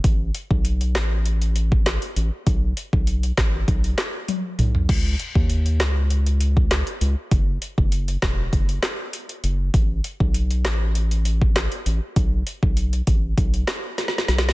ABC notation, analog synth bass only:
X:1
M:4/4
L:1/16
Q:1/4=99
K:Alyd
V:1 name="Analog synth bass" clef=bass
A,,,2 z B,,,3 A,,,6- A,,, z A,,, z | B,,,2 z B,,,3 A,,,2 B,,,2 z4 B,,,2 | C,,2 z D,,3 C,,6- C,, z C,, z | F,,,2 z F,,,3 E,,,2 F,,,2 z4 F,,,2 |
A,,,2 z B,,,3 A,,,6- A,,, z A,,, z | B,,,2 z B,,,3 A,,,2 B,,,2 z4 B,,,2 |]